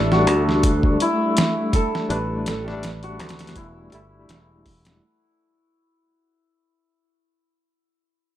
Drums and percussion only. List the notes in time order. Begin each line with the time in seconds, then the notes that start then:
0.12 snare
0.27 closed hi-hat
0.49 snare
0.63 kick, closed hi-hat
0.83 kick
1.00 closed hi-hat
1.37 snare, closed hi-hat
1.73 kick, closed hi-hat
1.95 snare
2.10 closed hi-hat
2.46 snare, closed hi-hat
2.68 snare
2.83 snare, closed hi-hat
3.03 closed hi-hat
3.19 snare, closed hi-hat
3.29 snare, closed hi-hat
3.39 snare, closed hi-hat
3.47 snare, closed hi-hat
3.56 kick, closed hi-hat
3.92 closed hi-hat
4.29 snare, closed hi-hat
4.66 kick, open hi-hat
4.85 snare, closed hi-hat